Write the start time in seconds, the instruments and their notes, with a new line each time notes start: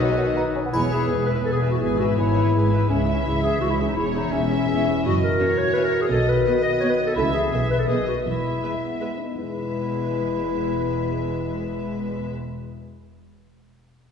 Already playing: double bass section B1, cello section B2, viola section D#3 D#4, violin section F#4 B4 D#5, flute section D#5, glockenspiel D#6
0.00 bassoon F#3, french horn section F#3 B4, clarinet B4
0.11 bassoon G#3
0.18 bassoon F#3
0.36 french horn section F#3 B4, bassoon D#4, clarinet B4
0.55 bassoon C#4
0.66 bassoon B3
0.73 double bass section E1, cello section E2, french horn section E3 B4, viola section B3 G#4, clarinet E4, violin section C#5 G#5, triangle
0.91 viola section E4 B4, clarinet G#4, violin section E5
1.09 double bass section E1, cello section E2, viola section B3 G#4, violin section B4 G#5
1.26 viola section E4 B4, clarinet B4, violin section E5
1.44 double bass section E1, cello section E2, viola section B3 G#4, clarinet A4, violin section G#5
1.52 clarinet G#4
1.63 viola section E4 B4, violin section E5
1.71 clarinet F#4
1.80 double bass section G#1, cello section G#2, viola section B3 G#4, clarinet G#4, violin section B4 G#5
1.99 viola section E4 B4, clarinet F#4, violin section E5
2.17 double bass section G#1, cello section G#2, viola section B3 G#4, clarinet E4, violin section C#5 G#5
2.36 viola section E4 B4, violin section E5
2.54 double bass section G#1, cello section G#2, viola section B3 G#4, violin section B4 G#5
2.72 viola section E4 B4, violin section E5
2.89 double bass section C#2, cello section C#2, french horn section E3 G#4, clarinet C#4, viola section E4 G#4, violin section C#5 E5
3.07 viola section C#4 E4, clarinet E4, violin section E5
3.25 cello section C#2, double bass section C#2, viola section E4 G#4, violin section C#5
3.43 viola section C#4 E4, clarinet G#4, violin section E5
3.61 cello section C#2, double bass section C#2, viola section E4 G#4, clarinet F#4, violin section C#5
3.70 clarinet E4
3.80 viola section C#4 E4, violin section E5
3.87 clarinet D#4
3.96 double bass section E1, cello section E2, clarinet E4, viola section E4 G#4, violin section C#5
4.15 viola section C#4 E4, clarinet D#4, violin section E5
4.32 double bass section E1, cello section E2, clarinet C#4, viola section E4 G#4, violin section C#5 E5
4.51 viola section C#4 E4, violin section E5
4.69 double bass section E1, cello section E2, viola section E4 G#4, violin section C#5
4.86 viola section C#4 E4, violin section E5
5.05 double bass section F#1, cello section F#2, french horn section E3 F#4, clarinet F#4, violin section D#5
5.23 clarinet A#4
5.39 viola section C#4 F#4, violin section C#5 E5
5.58 clarinet C#5
5.73 viola section C#4 F#4, clarinet B4, violin section E5
5.84 clarinet A#4
6.01 clarinet G#4
6.10 double bass section B1, cello section B2, french horn section D#3, clarinet A4, violin section D#5
6.29 clarinet B4
6.45 viola section B3 F#4, violin section D#5
6.63 clarinet D#5
6.80 viola section B3 F#4, clarinet C#5, violin section D#5
6.89 clarinet B4
7.07 clarinet A4
7.16 double bass section C#2, cello section C#3, french horn section E3 A4, viola section A3 A4, clarinet E4, violin section E5
7.34 clarinet G#4
7.52 double bass section B1, cello section B2, viola section B3 G#4, french horn section B4, violin section E5
7.71 clarinet B4
7.79 clarinet A4
7.88 double bass section B1, cello section B2, french horn section D#3, viola section B3 B4, clarinet G#4, violin section D#5
8.07 clarinet F#4
8.25 double bass section E1, cello section E2, french horn section G#3, clarinet E4, violin section E5
8.63 viola section G#3 B4, french horn section G#3, violin section E5
8.83 french horn section B3
9.00 viola section G#3 B4, violin section E5
9.19 french horn section D#4
9.35 double bass section E1, cello section E2, viola section G#3, french horn section G#3 B4, clarinet E4, violin section B4 E5